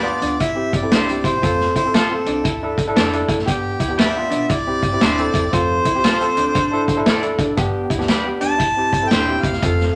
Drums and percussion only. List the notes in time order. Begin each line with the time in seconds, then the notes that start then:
0.22 closed hi-hat
0.40 kick, closed hi-hat
0.73 kick, closed hi-hat
0.91 snare, closed hi-hat
1.09 closed hi-hat
1.24 kick, closed hi-hat
1.43 kick, closed hi-hat
1.60 snare
1.76 kick, closed hi-hat
1.94 snare, closed hi-hat
2.26 closed hi-hat
2.45 kick, closed hi-hat
2.78 kick, closed hi-hat
2.96 snare, closed hi-hat
3.13 closed hi-hat
3.29 kick, closed hi-hat
3.39 snare
3.48 kick, closed hi-hat
3.80 kick, closed hi-hat
3.98 snare, closed hi-hat
4.31 closed hi-hat
4.50 kick, closed hi-hat
4.83 kick, closed hi-hat
5.01 snare, closed hi-hat
5.19 closed hi-hat
5.34 kick, closed hi-hat
5.53 kick, closed hi-hat
5.85 kick, closed hi-hat
6.04 snare, closed hi-hat
6.21 closed hi-hat
6.37 closed hi-hat
6.55 kick, closed hi-hat
6.88 kick, closed hi-hat
7.06 snare, closed hi-hat
7.23 closed hi-hat
7.39 kick, closed hi-hat
7.57 kick, closed hi-hat
7.90 kick, closed hi-hat
8.00 snare
8.08 snare, closed hi-hat
8.41 closed hi-hat
8.60 kick, closed hi-hat
8.93 kick, closed hi-hat
9.11 snare, closed hi-hat
9.43 kick, closed hi-hat
9.53 snare
9.63 kick, closed hi-hat
9.80 snare